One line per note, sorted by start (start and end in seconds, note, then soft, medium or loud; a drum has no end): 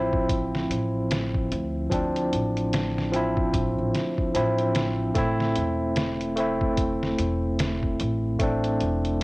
0.00 0.67 A1 medium
0.00 1.90 F3 medium
0.00 1.92 C4 medium
0.00 3.16 E4 medium
0.13 kick loud
0.29 kick loud
0.29 closed hi-hat medium
0.55 snare medium
0.70 1.48 A1 medium
0.70 closed hi-hat medium
1.11 snare loud
1.11 closed hi-hat medium
1.34 kick medium
1.52 1.88 D2 loud
1.52 closed hi-hat medium
1.90 2.28 D2 medium
1.90 3.08 F3 medium
1.90 3.09 C4 medium
1.90 3.10 D4 medium
1.90 kick loud
1.90 closed hi-hat medium
2.16 closed hi-hat soft
2.33 3.53 A1 medium
2.33 closed hi-hat medium
2.57 closed hi-hat soft
2.73 snare loud
2.73 closed hi-hat medium
2.98 snare medium
3.12 4.30 F3 medium
3.12 4.31 C4 medium
3.12 closed hi-hat medium
3.16 4.32 E4 medium
3.37 kick loud
3.54 3.75 A1 medium
3.54 kick loud
3.54 closed hi-hat medium
3.78 3.93 A1 medium
3.95 snare medium
3.95 closed hi-hat medium
4.18 kick medium
4.34 5.13 A1 loud
4.34 5.12 F3 medium
4.34 5.12 C4 medium
4.34 5.13 E4 medium
4.34 closed hi-hat medium
4.58 closed hi-hat soft
4.75 snare loud
4.75 closed hi-hat medium
5.14 5.52 A1 loud
5.14 6.33 A3 medium
5.14 6.34 C4 medium
5.14 6.35 E4 loud
5.14 kick loud
5.14 closed hi-hat medium
5.40 snare soft
5.55 7.16 E1 medium
5.55 closed hi-hat medium
5.96 snare loud
5.96 closed hi-hat medium
6.21 closed hi-hat soft
6.36 8.35 A3 medium
6.36 8.36 C4 medium
6.36 closed hi-hat medium
6.40 8.37 E4 medium
6.61 kick loud
6.77 kick loud
6.77 closed hi-hat medium
7.03 snare medium
7.18 7.97 E1 medium
7.18 closed hi-hat medium
7.59 snare loud
7.59 closed hi-hat medium
7.83 kick medium
8.00 8.37 A1 loud
8.00 closed hi-hat medium
8.39 8.77 A1 medium
8.39 9.23 A3 medium
8.39 9.23 C4 medium
8.39 9.23 D4 medium
8.39 kick loud
8.39 closed hi-hat medium
8.64 closed hi-hat soft
8.80 9.23 E1 medium
8.80 closed hi-hat medium
9.05 closed hi-hat soft